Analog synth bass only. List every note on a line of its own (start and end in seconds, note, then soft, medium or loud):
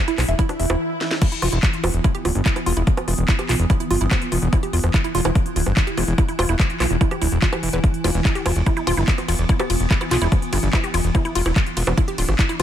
0.18 0.24 B1 medium
0.28 0.35 E1 medium
0.60 0.66 E1 medium
0.70 0.76 E1 medium
1.42 1.48 E1 medium
1.53 1.59 E1 medium
1.84 1.90 E1 loud
1.94 2.00 E1 medium
2.25 2.31 D1 medium
2.35 2.42 G1 medium
2.66 2.73 E1 medium
2.77 2.83 E1 medium
3.08 3.14 E1 loud
3.18 3.24 E1 medium
3.49 3.55 B1 loud
3.60 3.66 E1 medium
3.91 3.97 G1 medium
4.01 4.07 G1 medium
4.32 4.38 E1 medium
4.42 4.48 E1 medium
4.73 4.79 E1 loud
4.84 4.90 E1 medium
5.15 5.21 E1 medium
5.25 5.31 E1 medium
5.56 5.62 D1 loud
5.66 5.73 G1 medium
5.97 6.04 E1 medium
6.08 6.14 E1 medium
6.39 6.45 E1 loud
6.49 6.55 E1 medium
6.80 6.86 B1 medium
6.91 6.97 E1 medium
7.22 7.28 D1 medium
7.32 7.38 E1 medium
7.63 7.69 E1 medium
7.73 7.79 E1 medium
8.04 8.10 E1 loud
8.15 8.21 E1 medium
8.46 8.52 E1 medium
8.56 8.62 E1 medium
8.87 8.93 D1 medium
8.97 9.04 G1 medium
9.28 9.35 E1 medium
9.39 9.45 E1 medium
9.70 9.76 E1 loud
9.80 9.86 E1 medium
10.11 10.17 B1 loud
10.22 10.28 E1 medium
10.53 10.59 G1 medium
10.63 10.69 G1 medium
10.94 11.00 E1 medium
11.04 11.10 E1 medium
11.35 11.41 E1 loud
11.46 11.52 E1 medium
11.77 11.83 E1 loud
11.87 11.93 E1 medium
12.18 12.24 D1 medium
12.29 12.35 G1 medium